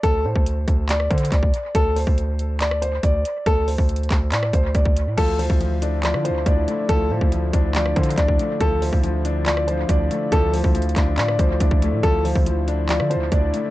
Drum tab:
CC |------------------------------------------------|------------------------------------------------|------------------------------------------------|x-----------------------------------------------|
HH |x-----------x-----x-----x-----x-x-x-x-----x-----|x-----o-----x-----x-----x-----x-----x-----x-----|x-----o-----x-x-x-x-----x-----x-----x-----x-----|x-----o-----x-----x-----x-----x-----x-----x-----|
CP |------------------------x-----------x-----------|------------------------x-----------------------|------------------x-----x-----------------------|------------------------x-----------------------|
SD |---------------------------r--------------------|---------------------------r--------------------|---------------------------r--------------------|---------------------------r--------------------|
BD |o--------o--------o-----------o-----o--o--------|o--------o--------------------------o-----------|o--------o--------o-----------o-----o--o--------|o--------o--------------------------o-----------|

CC |------------------------------------------------|------------------------------------------------|------------------------------------------------|------------------------------------------------|
HH |x-----------x-----x-----x-----x-x-x-x-----x-----|x-----o-----x-----x-----x-----x-----x-----x-----|x-----o-----x-x-x-x-----x-----x-----x-----x-----|x-----o-----x-----x-----x-----x-----x-----x-----|
CP |------------------------x-----------x-----------|------------------------x-----------------------|------------------x-----x-----------------------|------------------------x-----------------------|
SD |---------------------------r--------------------|---------------------------r--------------------|---------------------------r--------------------|---------------------------r--------------------|
BD |o--------o--------o-----------o-----o--o--------|o--------o--------------------------o-----------|o--------o--------o-----------o-----o--o--------|o--------o--------------------------o-----------|